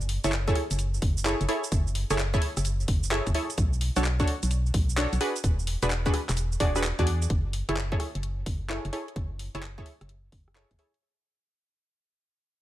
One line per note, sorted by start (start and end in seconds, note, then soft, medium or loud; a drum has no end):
0.00 0.18 F#1 loud
0.00 cabasa soft
0.09 open hi-hat loud
0.24 0.52 F#1 loud
0.24 0.31 E4 medium
0.24 0.31 G#4 medium
0.24 0.31 A4 medium
0.24 0.31 C#5 medium
0.24 closed hi-hat medium
0.24 cabasa medium
0.32 clap loud
0.32 cabasa medium
0.48 0.62 E4 medium
0.48 0.62 G#4 medium
0.48 0.62 A4 medium
0.48 0.62 C#5 loud
0.48 kick loud
0.48 closed hi-hat soft
0.48 cabasa soft
0.55 cross-stick medium
0.55 open hi-hat medium
0.71 0.99 F#1 medium
0.71 closed hi-hat medium
0.71 cabasa medium
0.79 closed hi-hat medium
0.79 cabasa medium
0.94 cabasa soft
1.02 1.34 F#1 medium
1.02 kick loud
1.02 open hi-hat loud
1.17 cabasa medium
1.25 1.44 E4 medium
1.25 1.44 G#4 medium
1.25 1.44 A4 medium
1.25 1.44 C#5 medium
1.25 clap loud
1.25 cabasa medium
1.41 1.47 F#1 medium
1.41 closed hi-hat medium
1.41 cabasa soft
1.49 1.62 E4 medium
1.49 1.62 G#4 medium
1.49 1.62 A4 medium
1.49 1.62 C#5 medium
1.49 open hi-hat medium
1.64 closed hi-hat soft
1.64 cabasa medium
1.72 2.04 F#1 loud
1.72 kick loud
1.72 closed hi-hat medium
1.72 cabasa medium
1.87 cabasa soft
1.95 open hi-hat loud
2.10 2.38 F#1 loud
2.10 2.18 E4 medium
2.10 2.18 G#4 medium
2.10 2.18 A4 medium
2.10 2.18 C#5 loud
2.10 closed hi-hat medium
2.10 cabasa medium
2.18 clap loud
2.18 cabasa medium
2.34 2.48 E4 medium
2.34 2.48 G#4 medium
2.34 2.48 A4 medium
2.34 2.48 C#5 loud
2.34 kick loud
2.34 closed hi-hat soft
2.34 cabasa soft
2.42 open hi-hat medium
2.57 2.85 F#1 loud
2.57 cross-stick soft
2.57 closed hi-hat medium
2.57 cabasa medium
2.65 closed hi-hat medium
2.65 cabasa medium
2.80 cabasa soft
2.88 3.20 F#1 medium
2.88 kick loud
2.88 open hi-hat loud
3.03 cabasa medium
3.11 3.30 E4 medium
3.11 3.30 G#4 medium
3.11 3.30 A4 medium
3.11 3.30 C#5 medium
3.11 clap loud
3.27 3.33 F#1 medium
3.27 kick medium
3.27 closed hi-hat medium
3.27 cabasa soft
3.34 3.48 E4 medium
3.34 3.49 G#4 medium
3.34 3.48 A4 medium
3.34 3.49 C#5 medium
3.34 open hi-hat medium
3.50 closed hi-hat soft
3.50 cabasa medium
3.58 3.90 B1 loud
3.58 kick loud
3.58 closed hi-hat medium
3.58 cabasa medium
3.73 cabasa soft
3.81 open hi-hat loud
3.96 4.24 B1 medium
3.96 4.04 D4 medium
3.96 4.04 F#4 medium
3.96 4.04 A4 medium
3.96 4.04 C#5 loud
3.96 closed hi-hat medium
3.96 cabasa medium
4.04 clap loud
4.04 cabasa medium
4.20 4.35 D4 medium
4.20 4.35 F#4 medium
4.20 4.35 A4 medium
4.20 4.34 C#5 loud
4.20 kick loud
4.20 closed hi-hat soft
4.20 cabasa soft
4.28 open hi-hat medium
4.43 4.71 B1 loud
4.43 closed hi-hat medium
4.43 cabasa medium
4.51 closed hi-hat medium
4.51 cabasa medium
4.66 cabasa soft
4.74 5.06 B1 medium
4.74 kick loud
4.74 open hi-hat loud
4.89 cabasa medium
4.97 5.16 D4 medium
4.97 5.16 F#4 medium
4.97 5.16 A4 medium
4.97 5.16 C#5 medium
4.97 clap loud
4.97 cabasa medium
5.13 5.19 B1 medium
5.13 closed hi-hat medium
5.13 cabasa soft
5.21 5.35 D4 medium
5.21 5.35 F#4 medium
5.21 5.35 G#4 medium
5.21 5.35 B4 medium
5.21 open hi-hat loud
5.36 closed hi-hat soft
5.36 cabasa medium
5.44 5.76 E1 loud
5.44 kick loud
5.44 closed hi-hat medium
5.44 cabasa medium
5.59 cabasa soft
5.67 open hi-hat loud
5.83 6.10 E1 medium
5.83 5.90 D4 medium
5.83 5.90 F#4 medium
5.83 5.90 G#4 medium
5.83 5.90 B4 loud
5.83 closed hi-hat medium
5.83 cabasa medium
5.90 clap loud
5.90 cabasa medium
6.06 6.21 D4 medium
6.06 6.21 F#4 medium
6.06 6.21 G#4 medium
6.06 6.21 B4 loud
6.06 kick loud
6.06 closed hi-hat soft
6.06 cabasa soft
6.14 cross-stick medium
6.14 open hi-hat loud
6.29 6.57 E1 loud
6.29 cross-stick medium
6.29 clap medium
6.29 closed hi-hat medium
6.29 cabasa medium
6.37 closed hi-hat medium
6.37 cabasa medium
6.52 cabasa soft
6.60 6.92 E1 medium
6.60 6.73 D4 medium
6.60 6.73 F#4 medium
6.60 6.73 G#4 medium
6.60 6.73 D5 loud
6.60 kick loud
6.60 open hi-hat loud
6.76 6.83 D4 medium
6.76 6.83 F#4 medium
6.76 6.83 G#4 medium
6.76 6.83 B4 medium
6.76 cross-stick medium
6.76 cabasa medium
6.83 clap loud
6.83 cabasa medium
6.99 7.27 E2 medium
6.99 7.29 D4 medium
6.99 7.29 F#4 medium
6.99 7.29 G#4 medium
6.99 7.29 D5 medium
6.99 kick medium
6.99 closed hi-hat medium
6.99 cabasa soft
7.07 open hi-hat loud
7.22 closed hi-hat soft
7.22 cabasa medium
7.30 7.62 F#1 loud
7.30 kick loud
7.30 closed hi-hat medium
7.53 open hi-hat loud
7.69 7.96 F#1 medium
7.69 7.76 E4 medium
7.69 7.76 G#4 medium
7.69 7.76 A4 medium
7.69 7.76 C#5 medium
7.69 closed hi-hat medium
7.77 clap loud
7.92 8.07 E4 medium
7.92 8.07 G#4 medium
7.92 8.07 A4 medium
7.92 8.07 C#5 loud
7.92 kick loud
8.00 cross-stick medium
8.00 open hi-hat medium
8.15 8.43 F#1 medium
8.15 closed hi-hat medium
8.23 closed hi-hat medium
8.46 8.78 F#1 medium
8.46 kick medium
8.46 open hi-hat loud
8.70 8.88 E4 medium
8.70 8.88 G#4 medium
8.70 8.88 A4 medium
8.70 8.88 C#5 medium
8.70 clap loud
8.85 8.91 F#1 medium
8.85 closed hi-hat soft
8.93 9.07 E4 medium
8.93 9.07 G#4 medium
8.93 9.07 A4 medium
8.93 9.07 C#5 medium
8.93 open hi-hat medium
9.08 closed hi-hat soft
9.16 9.48 F#1 medium
9.16 kick loud
9.16 closed hi-hat medium
9.39 open hi-hat loud
9.55 9.82 F#1 medium
9.55 9.62 E4 medium
9.55 9.62 G#4 medium
9.55 9.62 A4 medium
9.55 9.62 C#5 medium
9.55 closed hi-hat medium
9.63 clap loud
9.78 9.93 E4 medium
9.78 9.93 G#4 medium
9.78 9.93 A4 medium
9.78 9.93 C#5 medium
9.78 kick loud
9.86 open hi-hat medium
10.01 10.29 F#1 medium
10.01 cross-stick soft
10.01 closed hi-hat medium
10.09 closed hi-hat medium
10.32 10.64 F#1 medium
10.32 kick medium
10.32 open hi-hat loud
10.48 cross-stick soft
10.55 10.74 E4 medium
10.55 10.74 G#4 medium
10.55 10.74 A4 medium
10.55 10.74 C#5 medium
10.55 clap loud
10.71 10.77 F#1 medium
10.71 kick medium
10.71 closed hi-hat soft
10.79 10.93 E4 medium
10.79 10.93 G#4 medium
10.79 10.93 A4 medium
10.79 10.93 C#5 medium
10.79 open hi-hat medium
10.94 closed hi-hat soft